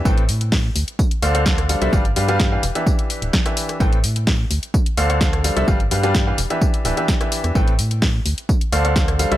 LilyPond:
<<
  \new Staff \with { instrumentName = "Upright piano" } { \time 4/4 \key a \minor \tempo 4 = 128 <a, c' a' b' g''>16 r2 r16 <d d' a' c'' f''>16 <d d' a' c'' f''>16 <d d' a' c'' f''>8 <g d' a' c'' f''>16 <g d' a' c'' e''>16 | <g d' g' b' f''>16 r16 <g d' g' b' f''>16 <g d' g' b' f''>8 <e d' g' b' f''>16 r16 <e d' g' b' e''>4. <e d' g' b' e''>8. | <a, c' a' b' g''>16 r2 r16 <d d' a' c'' f''>16 <d d' a' c'' f''>16 <d d' a' c'' f''>8 <g d' a' c'' f''>16 <g d' a' c'' e''>16 | <g d' g' b' f''>16 r16 <g d' g' b' f''>16 <g d' g' b' f''>8 <e d' g' b' f''>16 r16 <e d' g' b' e''>8. <e d' g' b' e''>16 <e d' g' b' e''>8 <e d' g' b' e''>8. |
<a, c' a' b' g''>16 r2 r16 <d d' a' c'' f''>16 <d d' a' c'' f''>16 <d d' c'' f''>8 <g d' a' c'' f''>16 <g d' a' c'' e''>16 | }
  \new Staff \with { instrumentName = "FM bass" } { \clef bass \time 4/4 \key a \minor a,,8 a,4 d,16 r8. d,4~ d,16 c,16 | g,,8 g,4 e,,16 r4 d,,16 r4 | a,,8 a,4 d,16 r8. d,4~ d,16 c,16 | g,,8 g,4 e,,16 r8. d,,16 r4 e,16 |
a,,8 a,4 d,16 r8. d,4~ d,16 c,16 | }
  \new DrumStaff \with { instrumentName = "Drums" } \drummode { \time 4/4 <bd tamb>16 hh16 <hho tamb>16 hh16 <hho bd sn>8 <hho tamb>16 hh16 <bd tamb>16 hh16 <hho tamb>16 hh16 <bd sn tamb>16 <hh ss>16 <hho tamb>16 <hh ss>16 | <bd tamb>16 hh16 <hho tamb>16 <hh sn>16 <bd sn tamb>8 <hho tamb>16 hh16 <bd tamb>16 hh16 <hho tamb>16 hh16 <bd sn tamb>16 <hh ss>16 <hho tamb>16 <hh ss>16 | <bd tamb>16 hh16 <hho tamb>16 hh16 <hho bd sn>8 <hho tamb>16 hh16 <bd tamb>16 hh16 <hho tamb>16 hh16 <bd sn tamb>16 <hh ss>16 <hho tamb>16 <hh ss>16 | <bd tamb>16 hh16 <hho tamb>16 <hh sn>16 <bd sn tamb>8 <hho tamb>16 hh16 <bd tamb>16 hh16 <hho tamb>16 hh16 <bd sn tamb>16 <hh ss>16 <hho tamb>16 <hh ss>16 |
<bd tamb>16 hh16 <hho tamb>16 hh16 <hho bd sn>8 <hho tamb>16 hh16 <bd tamb>16 hh16 <hho tamb>16 hh16 <bd sn tamb>16 <hh ss>16 <hho tamb>16 <hh ss>16 | }
>>